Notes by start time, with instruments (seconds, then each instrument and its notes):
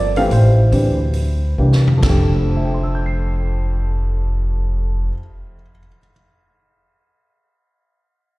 Already playing: upright bass G1, upright piano F3 A#3 C4 A4 D5
0.16 upright piano E3 A3 C4 G4 F5, open hi-hat
0.30 upright bass A1, upright piano E4 C5, open hi-hat
0.35 upright piano G4
0.72 upright bass D2, upright piano E3 C4 D4 G4, kick, open hi-hat
1.13 open hi-hat
1.58 upright bass C2, upright piano E3 A#3 D4 G4
1.72 snare
1.87 floor tom
1.97 upright piano F2 D3
2.03 upright bass F1, upright piano A3 A4, kick, snare, ride bell
2.09 upright piano G4
2.49 upright piano C5
2.57 upright piano E5
2.65 upright piano G5
2.74 upright piano C6
2.83 upright piano E6
2.95 upright piano G6
3.06 upright piano C7